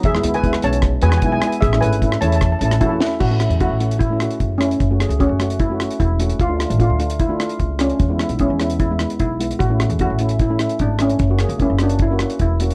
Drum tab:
CC |----------------|----------------|x---------------|----------------|
HH |x-xxx-xxx-xxx-xx|x-xxx-xxx-xxx---|--xxx-xxx-xxx-xx|x-xxx-xxx-xxx-xx|
SD |-r---r--r--r--r-|-r---r--r--r--o-|--r-------r---r-|--r---r---r-----|
BD |o---o---o---o---|o---o---o---o---|o---o---o---o---|o---o---o---o---|

CC |----------------|----------------|----------------|----------------|
HH |x-xxx-xxx-xxx-xx|x-xxx-xxx-xxx-xx|x-xxx-xxx-xxx-xx|x-xxx-xxx-xxx-xx|
SD |--r-------r---r-|--r---r---r-----|--r-------r---r-|--r---r---r-----|
BD |o---o---o---o---|o---o---o---o---|o---o---o---o---|o---o---o---o---|